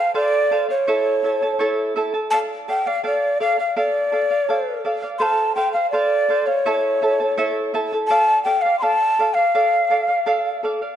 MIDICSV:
0, 0, Header, 1, 3, 480
1, 0, Start_track
1, 0, Tempo, 722892
1, 575, Time_signature, 2, 2, 24, 8
1, 7277, End_track
2, 0, Start_track
2, 0, Title_t, "Quena"
2, 0, Program_c, 0, 77
2, 0, Note_on_c, 0, 77, 71
2, 93, Note_off_c, 0, 77, 0
2, 103, Note_on_c, 0, 74, 98
2, 434, Note_off_c, 0, 74, 0
2, 467, Note_on_c, 0, 73, 69
2, 1275, Note_off_c, 0, 73, 0
2, 1531, Note_on_c, 0, 81, 116
2, 1585, Note_off_c, 0, 81, 0
2, 1790, Note_on_c, 0, 79, 85
2, 1908, Note_on_c, 0, 77, 81
2, 1917, Note_off_c, 0, 79, 0
2, 2022, Note_off_c, 0, 77, 0
2, 2029, Note_on_c, 0, 74, 86
2, 2246, Note_off_c, 0, 74, 0
2, 2264, Note_on_c, 0, 77, 91
2, 2372, Note_off_c, 0, 77, 0
2, 2386, Note_on_c, 0, 77, 72
2, 2493, Note_off_c, 0, 77, 0
2, 2510, Note_on_c, 0, 74, 82
2, 3196, Note_off_c, 0, 74, 0
2, 3444, Note_on_c, 0, 84, 86
2, 3468, Note_on_c, 0, 81, 94
2, 3475, Note_off_c, 0, 84, 0
2, 3673, Note_off_c, 0, 81, 0
2, 3689, Note_on_c, 0, 79, 78
2, 3800, Note_off_c, 0, 79, 0
2, 3804, Note_on_c, 0, 77, 70
2, 3916, Note_off_c, 0, 77, 0
2, 3920, Note_on_c, 0, 74, 88
2, 4292, Note_on_c, 0, 73, 74
2, 4302, Note_off_c, 0, 74, 0
2, 5133, Note_off_c, 0, 73, 0
2, 5362, Note_on_c, 0, 81, 110
2, 5591, Note_off_c, 0, 81, 0
2, 5604, Note_on_c, 0, 79, 91
2, 5720, Note_on_c, 0, 77, 77
2, 5730, Note_off_c, 0, 79, 0
2, 5833, Note_off_c, 0, 77, 0
2, 5837, Note_on_c, 0, 84, 98
2, 5860, Note_on_c, 0, 81, 106
2, 5867, Note_off_c, 0, 84, 0
2, 6201, Note_on_c, 0, 77, 78
2, 6211, Note_off_c, 0, 81, 0
2, 7048, Note_off_c, 0, 77, 0
2, 7277, End_track
3, 0, Start_track
3, 0, Title_t, "Charango"
3, 0, Program_c, 1, 24
3, 0, Note_on_c, 1, 72, 39
3, 0, Note_on_c, 1, 77, 53
3, 91, Note_off_c, 1, 72, 0
3, 94, Note_off_c, 1, 77, 0
3, 97, Note_on_c, 1, 69, 73
3, 99, Note_on_c, 1, 72, 72
3, 101, Note_on_c, 1, 77, 77
3, 332, Note_off_c, 1, 69, 0
3, 333, Note_off_c, 1, 72, 0
3, 338, Note_off_c, 1, 77, 0
3, 340, Note_on_c, 1, 69, 62
3, 341, Note_on_c, 1, 72, 57
3, 347, Note_on_c, 1, 77, 66
3, 448, Note_off_c, 1, 77, 0
3, 453, Note_off_c, 1, 72, 0
3, 456, Note_on_c, 1, 77, 45
3, 457, Note_off_c, 1, 69, 0
3, 465, Note_on_c, 1, 72, 39
3, 575, Note_off_c, 1, 77, 0
3, 577, Note_off_c, 1, 72, 0
3, 579, Note_on_c, 1, 73, 69
3, 582, Note_on_c, 1, 76, 69
3, 584, Note_on_c, 1, 64, 79
3, 586, Note_on_c, 1, 69, 78
3, 586, Note_on_c, 1, 81, 71
3, 815, Note_off_c, 1, 76, 0
3, 817, Note_off_c, 1, 64, 0
3, 817, Note_off_c, 1, 73, 0
3, 819, Note_off_c, 1, 69, 0
3, 821, Note_off_c, 1, 81, 0
3, 823, Note_on_c, 1, 76, 50
3, 825, Note_on_c, 1, 64, 49
3, 827, Note_on_c, 1, 69, 63
3, 834, Note_on_c, 1, 81, 60
3, 937, Note_off_c, 1, 81, 0
3, 939, Note_off_c, 1, 76, 0
3, 940, Note_off_c, 1, 64, 0
3, 941, Note_off_c, 1, 69, 0
3, 945, Note_on_c, 1, 81, 54
3, 949, Note_on_c, 1, 69, 44
3, 950, Note_on_c, 1, 64, 41
3, 1056, Note_off_c, 1, 64, 0
3, 1056, Note_off_c, 1, 69, 0
3, 1056, Note_on_c, 1, 73, 81
3, 1059, Note_off_c, 1, 81, 0
3, 1062, Note_on_c, 1, 76, 72
3, 1064, Note_on_c, 1, 64, 78
3, 1064, Note_on_c, 1, 69, 81
3, 1067, Note_on_c, 1, 81, 96
3, 1292, Note_off_c, 1, 76, 0
3, 1294, Note_off_c, 1, 64, 0
3, 1296, Note_off_c, 1, 73, 0
3, 1297, Note_off_c, 1, 69, 0
3, 1300, Note_on_c, 1, 76, 64
3, 1301, Note_off_c, 1, 81, 0
3, 1302, Note_on_c, 1, 64, 73
3, 1305, Note_on_c, 1, 69, 72
3, 1308, Note_on_c, 1, 81, 76
3, 1411, Note_off_c, 1, 81, 0
3, 1416, Note_off_c, 1, 69, 0
3, 1417, Note_off_c, 1, 76, 0
3, 1419, Note_off_c, 1, 64, 0
3, 1419, Note_on_c, 1, 81, 47
3, 1424, Note_on_c, 1, 69, 41
3, 1428, Note_on_c, 1, 64, 38
3, 1533, Note_off_c, 1, 69, 0
3, 1537, Note_off_c, 1, 81, 0
3, 1538, Note_off_c, 1, 64, 0
3, 1540, Note_on_c, 1, 69, 76
3, 1545, Note_on_c, 1, 74, 80
3, 1547, Note_on_c, 1, 77, 81
3, 1770, Note_off_c, 1, 69, 0
3, 1776, Note_off_c, 1, 74, 0
3, 1778, Note_on_c, 1, 69, 50
3, 1779, Note_off_c, 1, 77, 0
3, 1784, Note_on_c, 1, 74, 55
3, 1787, Note_on_c, 1, 77, 62
3, 1891, Note_off_c, 1, 77, 0
3, 1897, Note_off_c, 1, 69, 0
3, 1897, Note_off_c, 1, 74, 0
3, 1899, Note_on_c, 1, 77, 48
3, 1905, Note_on_c, 1, 74, 43
3, 2011, Note_off_c, 1, 74, 0
3, 2014, Note_off_c, 1, 77, 0
3, 2015, Note_on_c, 1, 69, 69
3, 2019, Note_on_c, 1, 74, 67
3, 2022, Note_on_c, 1, 77, 79
3, 2251, Note_off_c, 1, 69, 0
3, 2253, Note_off_c, 1, 74, 0
3, 2258, Note_off_c, 1, 77, 0
3, 2259, Note_on_c, 1, 69, 57
3, 2261, Note_on_c, 1, 74, 60
3, 2266, Note_on_c, 1, 77, 64
3, 2368, Note_off_c, 1, 77, 0
3, 2373, Note_off_c, 1, 74, 0
3, 2376, Note_on_c, 1, 77, 44
3, 2377, Note_off_c, 1, 69, 0
3, 2384, Note_on_c, 1, 74, 37
3, 2492, Note_off_c, 1, 74, 0
3, 2496, Note_off_c, 1, 77, 0
3, 2499, Note_on_c, 1, 69, 65
3, 2500, Note_on_c, 1, 74, 77
3, 2502, Note_on_c, 1, 77, 84
3, 2727, Note_off_c, 1, 69, 0
3, 2733, Note_off_c, 1, 74, 0
3, 2735, Note_off_c, 1, 77, 0
3, 2735, Note_on_c, 1, 69, 58
3, 2741, Note_on_c, 1, 74, 51
3, 2743, Note_on_c, 1, 77, 52
3, 2852, Note_off_c, 1, 77, 0
3, 2855, Note_off_c, 1, 69, 0
3, 2858, Note_off_c, 1, 74, 0
3, 2860, Note_on_c, 1, 77, 53
3, 2865, Note_on_c, 1, 74, 36
3, 2978, Note_off_c, 1, 77, 0
3, 2979, Note_off_c, 1, 74, 0
3, 2979, Note_on_c, 1, 69, 69
3, 2987, Note_on_c, 1, 74, 67
3, 2987, Note_on_c, 1, 77, 84
3, 3209, Note_off_c, 1, 69, 0
3, 3214, Note_off_c, 1, 74, 0
3, 3217, Note_off_c, 1, 77, 0
3, 3217, Note_on_c, 1, 69, 63
3, 3222, Note_on_c, 1, 74, 70
3, 3225, Note_on_c, 1, 77, 69
3, 3327, Note_off_c, 1, 77, 0
3, 3335, Note_on_c, 1, 77, 53
3, 3336, Note_off_c, 1, 69, 0
3, 3336, Note_off_c, 1, 74, 0
3, 3344, Note_on_c, 1, 74, 42
3, 3448, Note_off_c, 1, 74, 0
3, 3449, Note_off_c, 1, 77, 0
3, 3451, Note_on_c, 1, 69, 69
3, 3454, Note_on_c, 1, 72, 74
3, 3457, Note_on_c, 1, 77, 74
3, 3683, Note_off_c, 1, 69, 0
3, 3686, Note_off_c, 1, 72, 0
3, 3691, Note_on_c, 1, 69, 49
3, 3694, Note_off_c, 1, 77, 0
3, 3694, Note_on_c, 1, 72, 56
3, 3702, Note_on_c, 1, 77, 67
3, 3806, Note_off_c, 1, 77, 0
3, 3811, Note_off_c, 1, 72, 0
3, 3814, Note_off_c, 1, 69, 0
3, 3814, Note_on_c, 1, 77, 51
3, 3825, Note_on_c, 1, 72, 42
3, 3931, Note_off_c, 1, 72, 0
3, 3935, Note_off_c, 1, 77, 0
3, 3936, Note_on_c, 1, 69, 64
3, 3939, Note_on_c, 1, 72, 72
3, 3944, Note_on_c, 1, 77, 72
3, 4166, Note_off_c, 1, 69, 0
3, 4174, Note_on_c, 1, 69, 55
3, 4175, Note_off_c, 1, 72, 0
3, 4176, Note_off_c, 1, 77, 0
3, 4183, Note_on_c, 1, 72, 66
3, 4184, Note_on_c, 1, 77, 60
3, 4290, Note_off_c, 1, 77, 0
3, 4295, Note_off_c, 1, 69, 0
3, 4295, Note_off_c, 1, 72, 0
3, 4297, Note_on_c, 1, 77, 42
3, 4305, Note_on_c, 1, 72, 40
3, 4416, Note_off_c, 1, 72, 0
3, 4417, Note_off_c, 1, 77, 0
3, 4419, Note_on_c, 1, 73, 70
3, 4421, Note_on_c, 1, 76, 74
3, 4422, Note_on_c, 1, 64, 68
3, 4425, Note_on_c, 1, 81, 73
3, 4428, Note_on_c, 1, 69, 85
3, 4652, Note_off_c, 1, 76, 0
3, 4656, Note_off_c, 1, 64, 0
3, 4657, Note_off_c, 1, 73, 0
3, 4660, Note_off_c, 1, 69, 0
3, 4660, Note_on_c, 1, 76, 59
3, 4661, Note_off_c, 1, 81, 0
3, 4664, Note_on_c, 1, 64, 53
3, 4668, Note_on_c, 1, 69, 56
3, 4669, Note_on_c, 1, 81, 58
3, 4771, Note_off_c, 1, 81, 0
3, 4775, Note_off_c, 1, 69, 0
3, 4778, Note_off_c, 1, 76, 0
3, 4779, Note_on_c, 1, 81, 49
3, 4780, Note_off_c, 1, 64, 0
3, 4783, Note_on_c, 1, 69, 51
3, 4790, Note_on_c, 1, 64, 36
3, 4889, Note_off_c, 1, 64, 0
3, 4895, Note_off_c, 1, 69, 0
3, 4895, Note_off_c, 1, 81, 0
3, 4897, Note_on_c, 1, 64, 83
3, 4897, Note_on_c, 1, 73, 86
3, 4900, Note_on_c, 1, 76, 85
3, 4903, Note_on_c, 1, 69, 100
3, 4903, Note_on_c, 1, 81, 95
3, 5130, Note_off_c, 1, 76, 0
3, 5132, Note_off_c, 1, 64, 0
3, 5135, Note_off_c, 1, 69, 0
3, 5135, Note_off_c, 1, 81, 0
3, 5136, Note_off_c, 1, 73, 0
3, 5138, Note_on_c, 1, 76, 61
3, 5140, Note_on_c, 1, 64, 72
3, 5143, Note_on_c, 1, 69, 76
3, 5143, Note_on_c, 1, 81, 78
3, 5255, Note_off_c, 1, 81, 0
3, 5256, Note_off_c, 1, 76, 0
3, 5257, Note_off_c, 1, 64, 0
3, 5259, Note_off_c, 1, 69, 0
3, 5263, Note_on_c, 1, 81, 46
3, 5268, Note_on_c, 1, 69, 46
3, 5271, Note_on_c, 1, 64, 38
3, 5370, Note_off_c, 1, 69, 0
3, 5376, Note_off_c, 1, 64, 0
3, 5378, Note_on_c, 1, 69, 70
3, 5379, Note_off_c, 1, 81, 0
3, 5380, Note_on_c, 1, 74, 79
3, 5384, Note_on_c, 1, 77, 94
3, 5604, Note_off_c, 1, 69, 0
3, 5609, Note_off_c, 1, 74, 0
3, 5612, Note_on_c, 1, 69, 58
3, 5613, Note_off_c, 1, 77, 0
3, 5617, Note_on_c, 1, 74, 65
3, 5621, Note_on_c, 1, 77, 63
3, 5733, Note_off_c, 1, 77, 0
3, 5734, Note_off_c, 1, 69, 0
3, 5736, Note_off_c, 1, 74, 0
3, 5740, Note_on_c, 1, 77, 54
3, 5750, Note_on_c, 1, 74, 44
3, 5854, Note_off_c, 1, 74, 0
3, 5856, Note_off_c, 1, 77, 0
3, 5858, Note_on_c, 1, 69, 71
3, 5862, Note_on_c, 1, 74, 73
3, 5864, Note_on_c, 1, 77, 80
3, 6093, Note_off_c, 1, 69, 0
3, 6098, Note_off_c, 1, 74, 0
3, 6100, Note_off_c, 1, 77, 0
3, 6101, Note_on_c, 1, 69, 54
3, 6106, Note_on_c, 1, 74, 53
3, 6111, Note_on_c, 1, 77, 65
3, 6209, Note_off_c, 1, 77, 0
3, 6217, Note_on_c, 1, 77, 53
3, 6218, Note_off_c, 1, 69, 0
3, 6220, Note_off_c, 1, 74, 0
3, 6227, Note_on_c, 1, 74, 35
3, 6332, Note_off_c, 1, 74, 0
3, 6334, Note_off_c, 1, 77, 0
3, 6338, Note_on_c, 1, 69, 70
3, 6340, Note_on_c, 1, 74, 81
3, 6342, Note_on_c, 1, 77, 75
3, 6565, Note_off_c, 1, 69, 0
3, 6572, Note_off_c, 1, 74, 0
3, 6573, Note_on_c, 1, 69, 55
3, 6577, Note_off_c, 1, 77, 0
3, 6580, Note_on_c, 1, 74, 62
3, 6585, Note_on_c, 1, 77, 53
3, 6685, Note_off_c, 1, 77, 0
3, 6693, Note_on_c, 1, 77, 47
3, 6694, Note_off_c, 1, 69, 0
3, 6694, Note_off_c, 1, 74, 0
3, 6702, Note_on_c, 1, 74, 40
3, 6809, Note_off_c, 1, 74, 0
3, 6812, Note_off_c, 1, 77, 0
3, 6813, Note_on_c, 1, 69, 75
3, 6817, Note_on_c, 1, 74, 89
3, 6820, Note_on_c, 1, 77, 92
3, 7052, Note_off_c, 1, 69, 0
3, 7056, Note_off_c, 1, 74, 0
3, 7057, Note_off_c, 1, 77, 0
3, 7060, Note_on_c, 1, 69, 58
3, 7067, Note_on_c, 1, 74, 60
3, 7070, Note_on_c, 1, 77, 64
3, 7175, Note_off_c, 1, 77, 0
3, 7177, Note_off_c, 1, 69, 0
3, 7180, Note_off_c, 1, 74, 0
3, 7182, Note_on_c, 1, 77, 48
3, 7188, Note_on_c, 1, 74, 37
3, 7277, Note_off_c, 1, 74, 0
3, 7277, Note_off_c, 1, 77, 0
3, 7277, End_track
0, 0, End_of_file